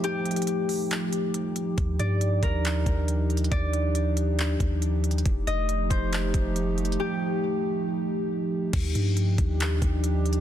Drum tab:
CC |------------------------------------------------------------------------------------------------|------------------------------------------------------------------------------------------------|------------------------------------------------------------------------------------------------|------------------------------------------------------------------------------------------------|
HH |x-----------x--x--x--x--x-----------o-----------x-----------x-----------x-----------x-----------|x-----------x-----------x-----------x-----------x-----------x-----------x-----------x---x---x---|x-----------x-----------x-----------x-----------x-----------x-----------x-----------x---x---x---|x-----------x-----------x-----------x-----------x-----------x-----------x-----------x---x---x---|
CP |------------------------------------------------x-----------------------------------------------|------------------------------------------------x-----------------------------------------------|------------------------------------------------x-----------------------------------------------|------------------------------------------------x-----------------------------------------------|
BD |------------------------------------------------------------------------------------------------|o-----------------------------------o-----------------------o-----------------------------------|o-----------------------------------------------------------o-----------------------------------|o-----------------------------------o-----------------------o-----------------------------------|

CC |------------------------------------------------------------------------------------------------|x-----------------------------------------------------------------------------------------------|
HH |------------------------------------------------------------------------------------------------|x-----------x-----------x-----------x-----------x-----------x-----------x-----------x---x-------|
CP |------------------------------------------------------------------------------------------------|------------------------------------------------x-----------------------------------------------|
BD |------------------------------------------------------------------------------------------------|o-----------------------------------o-----------------------o-----------------------------------|